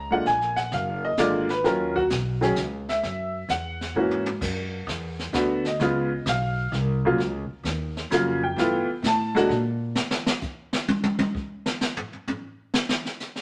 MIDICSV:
0, 0, Header, 1, 5, 480
1, 0, Start_track
1, 0, Tempo, 462250
1, 270, Time_signature, 3, 2, 24, 8
1, 13931, End_track
2, 0, Start_track
2, 0, Title_t, "Upright piano"
2, 0, Program_c, 0, 0
2, 0, Note_on_c, 0, 82, 109
2, 107, Note_off_c, 0, 82, 0
2, 109, Note_on_c, 0, 50, 65
2, 111, Note_on_c, 0, 56, 57
2, 123, Note_on_c, 0, 58, 60
2, 125, Note_on_c, 0, 78, 96
2, 129, Note_on_c, 0, 65, 66
2, 251, Note_off_c, 0, 50, 0
2, 252, Note_off_c, 0, 56, 0
2, 257, Note_off_c, 0, 58, 0
2, 261, Note_off_c, 0, 65, 0
2, 269, Note_off_c, 0, 78, 0
2, 280, Note_on_c, 0, 80, 108
2, 586, Note_on_c, 0, 78, 92
2, 593, Note_off_c, 0, 80, 0
2, 740, Note_off_c, 0, 78, 0
2, 766, Note_on_c, 0, 77, 81
2, 1076, Note_off_c, 0, 77, 0
2, 1086, Note_on_c, 0, 75, 97
2, 1223, Note_on_c, 0, 50, 83
2, 1230, Note_off_c, 0, 75, 0
2, 1232, Note_on_c, 0, 56, 75
2, 1232, Note_on_c, 0, 74, 80
2, 1237, Note_on_c, 0, 58, 67
2, 1245, Note_on_c, 0, 65, 76
2, 1522, Note_off_c, 0, 50, 0
2, 1526, Note_off_c, 0, 56, 0
2, 1529, Note_off_c, 0, 58, 0
2, 1533, Note_off_c, 0, 65, 0
2, 1549, Note_off_c, 0, 74, 0
2, 1562, Note_on_c, 0, 71, 84
2, 1704, Note_on_c, 0, 51, 67
2, 1708, Note_off_c, 0, 71, 0
2, 1711, Note_on_c, 0, 54, 63
2, 1718, Note_on_c, 0, 61, 66
2, 1721, Note_on_c, 0, 70, 90
2, 1727, Note_on_c, 0, 65, 68
2, 2003, Note_off_c, 0, 51, 0
2, 2006, Note_off_c, 0, 54, 0
2, 2009, Note_off_c, 0, 61, 0
2, 2014, Note_off_c, 0, 65, 0
2, 2032, Note_on_c, 0, 66, 100
2, 2034, Note_off_c, 0, 70, 0
2, 2125, Note_off_c, 0, 66, 0
2, 2503, Note_on_c, 0, 54, 67
2, 2504, Note_on_c, 0, 51, 71
2, 2517, Note_on_c, 0, 61, 72
2, 2522, Note_on_c, 0, 68, 78
2, 2648, Note_off_c, 0, 54, 0
2, 2649, Note_off_c, 0, 51, 0
2, 2655, Note_off_c, 0, 61, 0
2, 2657, Note_off_c, 0, 68, 0
2, 3005, Note_on_c, 0, 76, 75
2, 3593, Note_off_c, 0, 76, 0
2, 3636, Note_on_c, 0, 78, 92
2, 4080, Note_off_c, 0, 78, 0
2, 4110, Note_on_c, 0, 52, 67
2, 4113, Note_on_c, 0, 58, 57
2, 4115, Note_on_c, 0, 61, 61
2, 4123, Note_on_c, 0, 66, 71
2, 4406, Note_off_c, 0, 52, 0
2, 4407, Note_off_c, 0, 58, 0
2, 4408, Note_off_c, 0, 61, 0
2, 4412, Note_off_c, 0, 66, 0
2, 5536, Note_on_c, 0, 50, 70
2, 5540, Note_on_c, 0, 57, 61
2, 5549, Note_on_c, 0, 59, 66
2, 5557, Note_on_c, 0, 66, 80
2, 5838, Note_off_c, 0, 50, 0
2, 5840, Note_off_c, 0, 57, 0
2, 5845, Note_off_c, 0, 59, 0
2, 5849, Note_off_c, 0, 66, 0
2, 5888, Note_on_c, 0, 75, 79
2, 6019, Note_on_c, 0, 49, 65
2, 6025, Note_on_c, 0, 56, 59
2, 6036, Note_on_c, 0, 59, 57
2, 6046, Note_on_c, 0, 65, 76
2, 6319, Note_off_c, 0, 49, 0
2, 6323, Note_off_c, 0, 56, 0
2, 6328, Note_off_c, 0, 59, 0
2, 6333, Note_off_c, 0, 65, 0
2, 6473, Note_off_c, 0, 75, 0
2, 6532, Note_on_c, 0, 77, 95
2, 6968, Note_off_c, 0, 77, 0
2, 7320, Note_on_c, 0, 49, 70
2, 7329, Note_on_c, 0, 54, 64
2, 7329, Note_on_c, 0, 58, 69
2, 7338, Note_on_c, 0, 65, 83
2, 7455, Note_off_c, 0, 49, 0
2, 7460, Note_off_c, 0, 54, 0
2, 7460, Note_off_c, 0, 58, 0
2, 7465, Note_off_c, 0, 65, 0
2, 8421, Note_on_c, 0, 49, 76
2, 8433, Note_on_c, 0, 54, 60
2, 8437, Note_on_c, 0, 58, 64
2, 8449, Note_on_c, 0, 65, 81
2, 8720, Note_off_c, 0, 49, 0
2, 8726, Note_off_c, 0, 54, 0
2, 8728, Note_off_c, 0, 58, 0
2, 8734, Note_off_c, 0, 65, 0
2, 8759, Note_on_c, 0, 79, 89
2, 8904, Note_on_c, 0, 52, 72
2, 8908, Note_on_c, 0, 57, 66
2, 8916, Note_on_c, 0, 59, 71
2, 8924, Note_on_c, 0, 65, 79
2, 9201, Note_off_c, 0, 52, 0
2, 9203, Note_off_c, 0, 57, 0
2, 9207, Note_off_c, 0, 59, 0
2, 9211, Note_off_c, 0, 65, 0
2, 9347, Note_off_c, 0, 79, 0
2, 9416, Note_on_c, 0, 81, 92
2, 9706, Note_on_c, 0, 50, 83
2, 9706, Note_on_c, 0, 56, 82
2, 9720, Note_on_c, 0, 58, 74
2, 9725, Note_on_c, 0, 66, 103
2, 9847, Note_off_c, 0, 50, 0
2, 9847, Note_off_c, 0, 56, 0
2, 9849, Note_off_c, 0, 81, 0
2, 9854, Note_off_c, 0, 58, 0
2, 9857, Note_off_c, 0, 66, 0
2, 13931, End_track
3, 0, Start_track
3, 0, Title_t, "Upright bass"
3, 0, Program_c, 1, 32
3, 0, Note_on_c, 1, 37, 85
3, 250, Note_off_c, 1, 37, 0
3, 269, Note_on_c, 1, 34, 91
3, 735, Note_off_c, 1, 34, 0
3, 746, Note_on_c, 1, 30, 97
3, 1214, Note_off_c, 1, 30, 0
3, 1220, Note_on_c, 1, 32, 92
3, 1691, Note_off_c, 1, 32, 0
3, 1708, Note_on_c, 1, 39, 86
3, 2175, Note_off_c, 1, 39, 0
3, 2184, Note_on_c, 1, 35, 99
3, 2654, Note_off_c, 1, 35, 0
3, 2667, Note_on_c, 1, 37, 99
3, 3135, Note_off_c, 1, 37, 0
3, 3149, Note_on_c, 1, 42, 89
3, 3614, Note_off_c, 1, 42, 0
3, 3620, Note_on_c, 1, 40, 93
3, 4091, Note_off_c, 1, 40, 0
3, 4100, Note_on_c, 1, 44, 92
3, 4571, Note_off_c, 1, 44, 0
3, 4579, Note_on_c, 1, 42, 93
3, 5050, Note_off_c, 1, 42, 0
3, 5056, Note_on_c, 1, 40, 101
3, 5528, Note_off_c, 1, 40, 0
3, 5534, Note_on_c, 1, 38, 96
3, 6007, Note_off_c, 1, 38, 0
3, 6019, Note_on_c, 1, 37, 90
3, 6490, Note_off_c, 1, 37, 0
3, 6498, Note_on_c, 1, 35, 104
3, 6969, Note_off_c, 1, 35, 0
3, 6977, Note_on_c, 1, 36, 93
3, 7449, Note_off_c, 1, 36, 0
3, 7458, Note_on_c, 1, 37, 99
3, 7768, Note_off_c, 1, 37, 0
3, 7928, Note_on_c, 1, 39, 92
3, 8403, Note_off_c, 1, 39, 0
3, 8414, Note_on_c, 1, 41, 93
3, 8886, Note_off_c, 1, 41, 0
3, 8892, Note_on_c, 1, 43, 94
3, 9204, Note_off_c, 1, 43, 0
3, 9372, Note_on_c, 1, 45, 98
3, 9844, Note_off_c, 1, 45, 0
3, 9855, Note_on_c, 1, 46, 111
3, 10326, Note_off_c, 1, 46, 0
3, 13931, End_track
4, 0, Start_track
4, 0, Title_t, "Muted upright bass strokes"
4, 7789, Note_on_c, 9, 29, 43
4, 7893, Note_off_c, 9, 29, 0
4, 9213, Note_on_c, 9, 29, 43
4, 9317, Note_off_c, 9, 29, 0
4, 13931, End_track
5, 0, Start_track
5, 0, Title_t, "Drums"
5, 266, Note_on_c, 9, 25, 41
5, 266, Note_on_c, 9, 38, 49
5, 370, Note_off_c, 9, 38, 0
5, 424, Note_on_c, 9, 38, 30
5, 528, Note_off_c, 9, 38, 0
5, 583, Note_on_c, 9, 38, 50
5, 687, Note_off_c, 9, 38, 0
5, 741, Note_on_c, 9, 38, 49
5, 845, Note_off_c, 9, 38, 0
5, 1216, Note_on_c, 9, 44, 57
5, 1221, Note_on_c, 9, 38, 65
5, 1320, Note_off_c, 9, 44, 0
5, 1325, Note_off_c, 9, 38, 0
5, 1546, Note_on_c, 9, 38, 45
5, 1650, Note_off_c, 9, 38, 0
5, 1707, Note_off_c, 9, 25, 0
5, 1707, Note_on_c, 9, 25, 51
5, 1707, Note_on_c, 9, 38, 45
5, 1810, Note_off_c, 9, 38, 0
5, 2034, Note_on_c, 9, 36, 53
5, 2138, Note_off_c, 9, 36, 0
5, 2178, Note_on_c, 9, 44, 57
5, 2184, Note_on_c, 9, 38, 65
5, 2282, Note_off_c, 9, 44, 0
5, 2287, Note_off_c, 9, 38, 0
5, 2514, Note_on_c, 9, 38, 45
5, 2618, Note_off_c, 9, 38, 0
5, 2655, Note_on_c, 9, 44, 70
5, 2661, Note_on_c, 9, 38, 62
5, 2759, Note_off_c, 9, 44, 0
5, 2765, Note_off_c, 9, 38, 0
5, 2997, Note_on_c, 9, 38, 49
5, 3101, Note_off_c, 9, 38, 0
5, 3147, Note_off_c, 9, 25, 0
5, 3147, Note_on_c, 9, 25, 51
5, 3147, Note_on_c, 9, 38, 50
5, 3251, Note_off_c, 9, 38, 0
5, 3623, Note_on_c, 9, 44, 70
5, 3629, Note_on_c, 9, 38, 68
5, 3727, Note_off_c, 9, 44, 0
5, 3732, Note_off_c, 9, 38, 0
5, 3956, Note_on_c, 9, 38, 40
5, 4060, Note_off_c, 9, 38, 0
5, 4267, Note_on_c, 9, 43, 60
5, 4371, Note_off_c, 9, 43, 0
5, 4423, Note_on_c, 9, 43, 94
5, 4527, Note_off_c, 9, 43, 0
5, 4584, Note_off_c, 9, 25, 0
5, 4584, Note_on_c, 9, 25, 51
5, 4584, Note_on_c, 9, 36, 74
5, 4584, Note_on_c, 9, 38, 43
5, 4584, Note_on_c, 9, 49, 83
5, 4688, Note_off_c, 9, 36, 0
5, 4688, Note_off_c, 9, 38, 0
5, 4688, Note_off_c, 9, 49, 0
5, 5068, Note_on_c, 9, 44, 60
5, 5073, Note_on_c, 9, 38, 72
5, 5172, Note_off_c, 9, 44, 0
5, 5177, Note_off_c, 9, 38, 0
5, 5391, Note_on_c, 9, 38, 49
5, 5495, Note_off_c, 9, 38, 0
5, 5536, Note_on_c, 9, 44, 57
5, 5542, Note_on_c, 9, 38, 68
5, 5640, Note_off_c, 9, 44, 0
5, 5645, Note_off_c, 9, 38, 0
5, 5863, Note_on_c, 9, 38, 46
5, 5967, Note_off_c, 9, 38, 0
5, 6017, Note_off_c, 9, 25, 0
5, 6017, Note_on_c, 9, 25, 52
5, 6017, Note_on_c, 9, 38, 47
5, 6120, Note_off_c, 9, 38, 0
5, 6499, Note_on_c, 9, 44, 66
5, 6504, Note_on_c, 9, 38, 65
5, 6603, Note_off_c, 9, 44, 0
5, 6608, Note_off_c, 9, 38, 0
5, 6987, Note_on_c, 9, 38, 48
5, 7091, Note_off_c, 9, 38, 0
5, 7473, Note_off_c, 9, 25, 0
5, 7473, Note_on_c, 9, 25, 48
5, 7473, Note_on_c, 9, 38, 53
5, 7577, Note_off_c, 9, 38, 0
5, 7940, Note_on_c, 9, 44, 56
5, 7945, Note_on_c, 9, 38, 70
5, 8044, Note_off_c, 9, 44, 0
5, 8049, Note_off_c, 9, 38, 0
5, 8273, Note_on_c, 9, 38, 48
5, 8377, Note_off_c, 9, 38, 0
5, 8423, Note_on_c, 9, 44, 60
5, 8428, Note_on_c, 9, 38, 69
5, 8526, Note_off_c, 9, 44, 0
5, 8532, Note_off_c, 9, 38, 0
5, 8908, Note_off_c, 9, 25, 0
5, 8908, Note_on_c, 9, 25, 55
5, 8908, Note_on_c, 9, 38, 50
5, 9012, Note_off_c, 9, 38, 0
5, 9381, Note_on_c, 9, 44, 64
5, 9386, Note_on_c, 9, 38, 72
5, 9485, Note_off_c, 9, 44, 0
5, 9490, Note_off_c, 9, 38, 0
5, 9717, Note_on_c, 9, 38, 50
5, 9821, Note_off_c, 9, 38, 0
5, 9866, Note_on_c, 9, 38, 46
5, 9969, Note_off_c, 9, 38, 0
5, 10337, Note_on_c, 9, 38, 94
5, 10440, Note_off_c, 9, 38, 0
5, 10495, Note_on_c, 9, 38, 98
5, 10599, Note_off_c, 9, 38, 0
5, 10658, Note_on_c, 9, 38, 108
5, 10762, Note_off_c, 9, 38, 0
5, 10812, Note_on_c, 9, 44, 62
5, 10822, Note_on_c, 9, 36, 74
5, 10859, Note_off_c, 9, 25, 0
5, 10915, Note_off_c, 9, 44, 0
5, 10926, Note_off_c, 9, 36, 0
5, 11139, Note_on_c, 9, 38, 94
5, 11243, Note_off_c, 9, 38, 0
5, 11300, Note_on_c, 9, 48, 86
5, 11404, Note_off_c, 9, 48, 0
5, 11459, Note_on_c, 9, 48, 84
5, 11562, Note_off_c, 9, 48, 0
5, 11615, Note_on_c, 9, 48, 105
5, 11719, Note_off_c, 9, 48, 0
5, 11783, Note_on_c, 9, 36, 85
5, 11887, Note_off_c, 9, 36, 0
5, 12105, Note_on_c, 9, 38, 96
5, 12209, Note_off_c, 9, 38, 0
5, 12259, Note_on_c, 9, 44, 55
5, 12265, Note_on_c, 9, 38, 102
5, 12363, Note_off_c, 9, 44, 0
5, 12368, Note_off_c, 9, 38, 0
5, 12426, Note_on_c, 9, 43, 105
5, 12530, Note_off_c, 9, 43, 0
5, 12594, Note_on_c, 9, 43, 39
5, 12698, Note_off_c, 9, 43, 0
5, 12747, Note_on_c, 9, 43, 97
5, 12851, Note_off_c, 9, 43, 0
5, 13225, Note_on_c, 9, 38, 97
5, 13329, Note_off_c, 9, 38, 0
5, 13385, Note_on_c, 9, 38, 94
5, 13489, Note_off_c, 9, 38, 0
5, 13553, Note_on_c, 9, 38, 37
5, 13657, Note_off_c, 9, 38, 0
5, 13706, Note_on_c, 9, 44, 64
5, 13711, Note_on_c, 9, 38, 38
5, 13810, Note_off_c, 9, 44, 0
5, 13815, Note_off_c, 9, 38, 0
5, 13869, Note_on_c, 9, 38, 49
5, 13931, Note_off_c, 9, 38, 0
5, 13931, End_track
0, 0, End_of_file